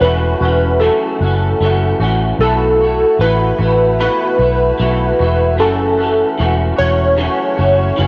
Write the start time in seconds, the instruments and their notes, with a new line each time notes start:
0.01 fingered electric bass E1, clean electric guitar E3 A3 C#4, synth keys B4
0.05 clean electric guitar F#4
0.41 fingered electric bass E1, clean electric guitar E3 A3 C#4 F#4
0.80 clean electric guitar F#2 C#3 E3 A3 C#4 F#4, synth keys A4
1.21 fingered electric bass F#1, clean electric guitar A3 C#4 F#4
1.25 clean electric guitar E3
1.60 fingered electric bass F#1, clean electric guitar E3 A3 C#4 F#4
2.00 fingered electric bass A1, clean electric guitar A3 C#4 F#4
2.04 clean electric guitar E3
2.39 fingered electric bass B1, clean electric guitar B2 E3 A3, synth keys A4
2.43 clean electric guitar E4 F#4
2.81 clean electric guitar A3 E4 F#4
3.19 fingered electric bass A1, clean electric guitar E3 A3 E4, synth keys B4
3.24 clean electric guitar F#4
3.59 fingered electric bass A1, clean electric guitar E4 F#4
3.63 clean electric guitar A3
3.99 clean electric guitar B2 E3 A3 E4 F#4, synth keys B4
4.38 fingered electric bass B1, clean electric guitar A3 E4 F#4
4.78 fingered electric bass B1, clean electric guitar E3 A3 E4
4.82 clean electric guitar F#4
5.19 fingered electric bass E1, clean electric guitar E4 F#4
5.23 clean electric guitar A3
5.57 fingered electric bass F#1, clean electric guitar F#2 C#3 E3 A3 C#4 F#4, synth keys A4
5.97 clean electric guitar A3 C#4 F#4
6.02 clean electric guitar E3
6.38 fingered electric bass E1, clean electric guitar E3 A3 C#4 F#4
6.77 fingered electric bass E1, clean electric guitar A3 C#4 F#4, synth keys C#5
6.81 clean electric guitar E3
7.17 clean electric guitar F#2 C#3 E3 A3 C#4 F#4
7.57 fingered electric bass F#1, clean electric guitar E3 A3 C#4 F#4
7.96 fingered electric bass F#1, clean electric guitar E3 A3 C#4
8.00 clean electric guitar F#4